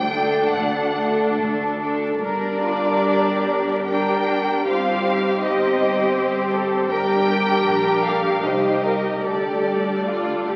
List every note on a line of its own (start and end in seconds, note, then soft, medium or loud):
0.00 0.42 D2 medium
0.00 1.81 D4 medium
0.00 0.50 G5 loud
0.08 0.94 A3 medium
0.08 0.94 D4 medium
0.08 0.94 A4 medium
0.51 1.29 D2 medium
0.51 1.38 F#5 medium
0.95 1.80 A3 medium
0.95 1.79 D4 medium
0.95 1.80 D4 medium
0.95 1.79 A4 medium
1.38 2.13 D2 medium
1.80 2.22 A3 soft
1.80 2.20 D4 medium
1.80 2.21 D4 soft
1.80 2.21 A4 medium
2.20 4.65 G1 medium
2.20 3.85 G3 medium
2.20 3.84 D4 medium
2.20 3.85 D4 medium
2.20 2.58 A#4 medium
2.20 3.84 A#4 medium
2.20 3.84 D5 medium
2.61 3.01 F4 medium
3.00 4.68 G4 medium
3.88 4.67 G3 medium
3.88 4.66 D4 medium
3.88 4.67 D4 medium
3.88 4.67 A#4 medium
3.88 4.68 G5 medium
4.67 6.87 G1 medium
4.67 5.42 G3 medium
4.67 5.42 C4 medium
4.67 5.06 F4 medium
4.67 5.41 G4 soft
4.67 5.41 C5 medium
4.67 5.41 F5 medium
5.06 6.16 D#4 medium
5.42 6.88 G3 medium
5.42 6.88 C4 medium
5.42 6.88 G4 medium
5.42 6.88 C5 medium
5.42 6.52 D#5 medium
6.15 6.52 G4 medium
6.52 6.90 A4 medium
6.89 7.65 G1 medium
6.89 8.41 G3 medium
6.89 8.41 D4 medium
6.89 8.41 G4 medium
6.89 7.27 A#4 medium
6.89 8.44 A#4 medium
6.89 8.01 G5 loud
7.27 7.66 G4 medium
7.66 8.44 A#1 medium
7.66 8.05 A#4 medium
8.03 8.43 A4 medium
8.03 8.43 F5 medium
8.43 9.24 C2 medium
8.43 9.22 G3 medium
8.43 9.24 D#4 medium
8.43 8.83 G4 medium
8.43 9.22 G4 medium
8.43 8.83 C5 medium
8.43 8.51 D#5 medium
8.50 8.59 F5 medium
8.59 8.67 D#5 medium
8.67 8.75 F5 soft
8.74 8.83 D#5 medium
8.83 9.24 A#4 medium
8.83 9.23 A#4 soft
8.83 8.92 F5 medium
8.90 9.23 D#5 medium
9.23 10.56 D2 medium
9.23 10.56 G3 medium
9.23 10.56 D4 medium
9.23 9.96 G4 soft
9.23 10.56 A4 soft
9.23 9.98 A4 soft
9.23 10.56 D5 medium
10.06 10.45 F4 soft
10.46 10.56 G4 soft